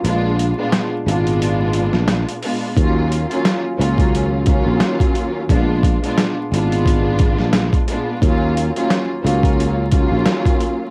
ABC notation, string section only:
X:1
M:4/4
L:1/16
Q:"Swing 16ths" 1/4=88
K:Ebm
V:1 name="String section"
[B,,A,C=DF]3 [B,,A,CDF]2 z [B,,A,CDF]6- [B,,A,CDF] z [B,,A,CDF]2 | [E,,G,B,DF]3 [E,,G,B,DF]2 z [E,,G,B,DF]4 [E,,G,B,DF]6 | [B,,A,C=DF]3 [B,,A,CDF]2 z [B,,A,CDF]6- [B,,A,CDF] z [B,,A,CDF]2 | [E,,G,B,DF]3 [E,,G,B,DF]2 z [E,,G,B,DF]4 [E,,G,B,DF]6 |]